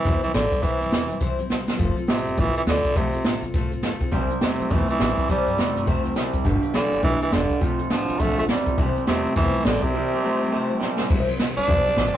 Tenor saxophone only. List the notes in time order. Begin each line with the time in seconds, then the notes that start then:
Already playing: E3
0.23 E3
0.34 D3
0.63 E3
2.08 C3
2.38 E3
2.57 E3
2.69 D3
2.97 C3
4.42 C3
4.71 E3
4.90 E3
5.31 G3
6.74 D3
7.04 E3
7.22 E3
7.33 D3
7.91 F3
8.19 A3
8.39 A3
8.50 G3
9.07 C3
9.36 E3
9.66 D3
9.83 C3
11.57 D4